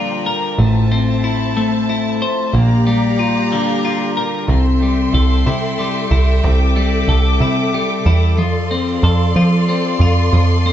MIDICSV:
0, 0, Header, 1, 4, 480
1, 0, Start_track
1, 0, Tempo, 650054
1, 434, Time_signature, 6, 3, 24, 8
1, 7921, End_track
2, 0, Start_track
2, 0, Title_t, "String section"
2, 0, Program_c, 0, 48
2, 0, Note_on_c, 0, 53, 65
2, 0, Note_on_c, 0, 74, 55
2, 0, Note_on_c, 0, 79, 58
2, 0, Note_on_c, 0, 82, 73
2, 403, Note_off_c, 0, 79, 0
2, 404, Note_off_c, 0, 82, 0
2, 419, Note_off_c, 0, 74, 0
2, 438, Note_on_c, 0, 76, 59
2, 438, Note_on_c, 0, 81, 75
2, 439, Note_on_c, 0, 72, 65
2, 1849, Note_off_c, 0, 53, 0
2, 1863, Note_off_c, 0, 76, 0
2, 1863, Note_off_c, 0, 81, 0
2, 1864, Note_off_c, 0, 72, 0
2, 1875, Note_on_c, 0, 74, 58
2, 1878, Note_on_c, 0, 77, 64
2, 1878, Note_on_c, 0, 82, 82
2, 1883, Note_on_c, 0, 67, 75
2, 3302, Note_off_c, 0, 74, 0
2, 3303, Note_off_c, 0, 77, 0
2, 3303, Note_off_c, 0, 82, 0
2, 3306, Note_off_c, 0, 67, 0
2, 3314, Note_on_c, 0, 69, 70
2, 3315, Note_on_c, 0, 76, 60
2, 3315, Note_on_c, 0, 79, 59
2, 3318, Note_on_c, 0, 84, 75
2, 4743, Note_off_c, 0, 84, 0
2, 4761, Note_on_c, 0, 86, 72
2, 6167, Note_off_c, 0, 76, 0
2, 6167, Note_off_c, 0, 79, 0
2, 6184, Note_off_c, 0, 86, 0
2, 6199, Note_on_c, 0, 74, 68
2, 6201, Note_on_c, 0, 77, 62
2, 6201, Note_on_c, 0, 84, 81
2, 7921, Note_off_c, 0, 69, 0
2, 7921, Note_off_c, 0, 74, 0
2, 7921, Note_off_c, 0, 77, 0
2, 7921, Note_off_c, 0, 84, 0
2, 7921, End_track
3, 0, Start_track
3, 0, Title_t, "Clean electric guitar"
3, 0, Program_c, 1, 27
3, 0, Note_on_c, 1, 46, 65
3, 0, Note_on_c, 1, 50, 63
3, 0, Note_on_c, 1, 55, 55
3, 0, Note_on_c, 1, 65, 59
3, 192, Note_off_c, 1, 46, 0
3, 195, Note_on_c, 1, 70, 70
3, 433, Note_off_c, 1, 50, 0
3, 433, Note_on_c, 1, 45, 65
3, 434, Note_off_c, 1, 55, 0
3, 434, Note_off_c, 1, 70, 0
3, 676, Note_on_c, 1, 60, 54
3, 913, Note_off_c, 1, 65, 0
3, 916, Note_on_c, 1, 64, 57
3, 1157, Note_on_c, 1, 57, 71
3, 1390, Note_off_c, 1, 64, 0
3, 1399, Note_on_c, 1, 64, 58
3, 1635, Note_off_c, 1, 45, 0
3, 1639, Note_on_c, 1, 72, 69
3, 1876, Note_off_c, 1, 60, 0
3, 1876, Note_on_c, 1, 46, 65
3, 1877, Note_off_c, 1, 57, 0
3, 1877, Note_off_c, 1, 64, 0
3, 1877, Note_off_c, 1, 72, 0
3, 2117, Note_on_c, 1, 55, 61
3, 2357, Note_on_c, 1, 65, 61
3, 2601, Note_on_c, 1, 50, 66
3, 2832, Note_off_c, 1, 65, 0
3, 2841, Note_on_c, 1, 65, 63
3, 3076, Note_off_c, 1, 46, 0
3, 3079, Note_on_c, 1, 70, 67
3, 3317, Note_off_c, 1, 55, 0
3, 3318, Note_off_c, 1, 70, 0
3, 3319, Note_off_c, 1, 50, 0
3, 3319, Note_off_c, 1, 65, 0
3, 3319, Note_on_c, 1, 48, 62
3, 3560, Note_on_c, 1, 55, 48
3, 3798, Note_on_c, 1, 69, 61
3, 4036, Note_on_c, 1, 64, 60
3, 4267, Note_off_c, 1, 55, 0
3, 4276, Note_on_c, 1, 55, 60
3, 4505, Note_off_c, 1, 64, 0
3, 4514, Note_on_c, 1, 64, 55
3, 4518, Note_off_c, 1, 48, 0
3, 4752, Note_on_c, 1, 48, 57
3, 4985, Note_off_c, 1, 55, 0
3, 4994, Note_on_c, 1, 55, 54
3, 5016, Note_off_c, 1, 69, 0
3, 5233, Note_on_c, 1, 69, 61
3, 5468, Note_off_c, 1, 64, 0
3, 5477, Note_on_c, 1, 64, 64
3, 5708, Note_off_c, 1, 55, 0
3, 5717, Note_on_c, 1, 55, 56
3, 5945, Note_off_c, 1, 64, 0
3, 5954, Note_off_c, 1, 48, 0
3, 5954, Note_on_c, 1, 64, 60
3, 6191, Note_on_c, 1, 53, 69
3, 6195, Note_off_c, 1, 64, 0
3, 6196, Note_off_c, 1, 55, 0
3, 6431, Note_on_c, 1, 60, 55
3, 6671, Note_off_c, 1, 69, 0
3, 6674, Note_on_c, 1, 69, 62
3, 6912, Note_on_c, 1, 65, 66
3, 7145, Note_off_c, 1, 60, 0
3, 7154, Note_on_c, 1, 60, 63
3, 7391, Note_off_c, 1, 65, 0
3, 7394, Note_on_c, 1, 65, 63
3, 7628, Note_off_c, 1, 53, 0
3, 7630, Note_on_c, 1, 53, 62
3, 7861, Note_off_c, 1, 60, 0
3, 7870, Note_on_c, 1, 60, 56
3, 7921, Note_off_c, 1, 53, 0
3, 7921, Note_off_c, 1, 60, 0
3, 7921, Note_off_c, 1, 65, 0
3, 7921, Note_off_c, 1, 69, 0
3, 7921, End_track
4, 0, Start_track
4, 0, Title_t, "Picked electric bass"
4, 0, Program_c, 2, 34
4, 0, Note_on_c, 2, 34, 77
4, 403, Note_off_c, 2, 34, 0
4, 432, Note_on_c, 2, 33, 77
4, 1846, Note_off_c, 2, 33, 0
4, 1871, Note_on_c, 2, 34, 82
4, 3286, Note_off_c, 2, 34, 0
4, 3310, Note_on_c, 2, 36, 80
4, 3737, Note_off_c, 2, 36, 0
4, 3792, Note_on_c, 2, 36, 81
4, 4006, Note_off_c, 2, 36, 0
4, 4034, Note_on_c, 2, 48, 66
4, 4459, Note_off_c, 2, 48, 0
4, 4511, Note_on_c, 2, 36, 87
4, 4726, Note_off_c, 2, 36, 0
4, 4755, Note_on_c, 2, 36, 89
4, 5180, Note_off_c, 2, 36, 0
4, 5226, Note_on_c, 2, 36, 80
4, 5442, Note_off_c, 2, 36, 0
4, 5466, Note_on_c, 2, 48, 72
4, 5895, Note_off_c, 2, 48, 0
4, 5950, Note_on_c, 2, 40, 89
4, 6191, Note_off_c, 2, 40, 0
4, 6191, Note_on_c, 2, 41, 93
4, 6617, Note_off_c, 2, 41, 0
4, 6668, Note_on_c, 2, 41, 84
4, 6883, Note_off_c, 2, 41, 0
4, 6909, Note_on_c, 2, 53, 70
4, 7335, Note_off_c, 2, 53, 0
4, 7381, Note_on_c, 2, 41, 90
4, 7599, Note_off_c, 2, 41, 0
4, 7625, Note_on_c, 2, 41, 85
4, 7921, Note_off_c, 2, 41, 0
4, 7921, End_track
0, 0, End_of_file